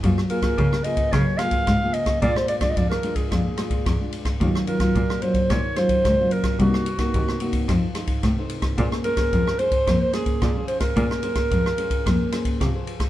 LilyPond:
<<
  \new Staff \with { instrumentName = "Clarinet" } { \time 4/4 \key bes \minor \tempo 4 = 110 r8 bes'4 ees''8 des''8 f''4 ees''8 | d''16 c''16 d''16 d''32 ees''32 d''16 bes'8 aes'16 aes'4. r8 | r8 bes'4 c''8 des''8 c''4 bes'8 | ges'2 r2 |
r8 bes'4 c''8. c''16 aes'4 c''16 bes'16~ | bes'2. r4 | }
  \new Staff \with { instrumentName = "Nylon-string guitar" } { \time 4/4 \key bes \minor << { <bes f' aes'>16 r16 <bes f' aes'>16 <bes f' aes'>8. <bes f' aes'>4 <bes f' aes'>8 r16 <bes f' aes'>8. | <aes d' f'>8. <aes d' f'>8. <aes d' f'>4 <aes d' f'>8 r16 <aes d' f'>8. | <ges des' f'>8 <ges des' f'>16 <ges des' f'>8. <ges des' f'>8. r16 <ges des' f'>8. <ges des' f'>8. | <bes ees' ges'>8 r16 <bes ees' ges'>8. <bes ees' ges'>8 <ees' a' c''>16 r16 <ees' a' c''>8 r16 <ees' a' c''>8. |
<des' aes' c''>8 <des' aes' c''>16 <des' aes' c''>8. <des' aes' c''>8. r16 <des' aes' c''>8. <des' aes' c''>8. | <des' aes' c''>8 <des' aes' c''>16 <des' aes' c''>8. <des' aes' c''>4 <des' aes' c''>8. <aes' c''>8. | } \\ { ges4 des4 ges4 des4 | bes,4 f4 bes,4 r4 | ees4 bes,4 ees4 bes,4 | c4 c4 f4 c4 |
bes4 f4 bes4 f4 | bes4 f4 bes4 f4 | } >> }
  \new Staff \with { instrumentName = "Cello" } { \clef bass \time 4/4 \key bes \minor ges,4 des4 des4 aes,4 | bes,4 f,4 f,4 e,4 | ees,4 bes,4 bes,4 des,4 | c,4 ees,4 f,4 a,4 |
bes,4 f,4 f,4 bes,4 | bes,4 f,4 f,4 c4 | }
  \new DrumStaff \with { instrumentName = "Drums" } \drummode { \time 4/4 <bd cymr>16 ss16 cymr16 <bd cymr ss>16 <bd cymr>16 ss16 cymr16 <bd cymr>16 <bd cymr ss>8 <cymr ss>16 <bd cymr>16 <bd cymr ss>8 cymr16 <bd cymr ss>16 | <bd cymr>16 ss16 cymr16 <bd cymr ss>16 <bd cymr>16 ss16 cymr16 <bd cymr>16 <bd cymr ss>8 <cymr ss>16 <bd cymr>16 <bd cymr ss>8 cymr16 <bd cymr ss>16 | <bd cymr>16 ss16 cymr16 <bd cymr ss>16 <bd cymr>16 ss16 cymr16 <bd cymr>16 <bd cymr ss>8 <cymr ss>16 <bd cymr>16 <bd cymr ss>8 cymr16 <bd cymr ss>16 | <bd cymr>16 ss16 cymr16 <bd cymr ss>16 <bd cymr>16 ss16 cymr16 <bd cymr>16 <bd cymr ss>8 <cymr ss>16 <bd cymr>16 <bd cymr ss>8 cymr16 <bd cymr ss>16 |
<bd cymr>16 ss16 cymr16 <bd cymr ss>16 <bd cymr>16 ss16 cymr16 <bd cymr>16 <bd cymr ss>8 <cymr ss>16 <bd cymr>16 <bd cymr ss>8 cymr16 <bd cymr ss>16 | <bd cymr>16 ss16 cymr16 <bd cymr ss>16 <bd cymr>16 ss16 cymr16 <bd cymr>16 <bd cymr ss>8 <cymr ss>16 <bd cymr>16 <bd cymr ss>8 cymr16 <bd cymr ss>16 | }
>>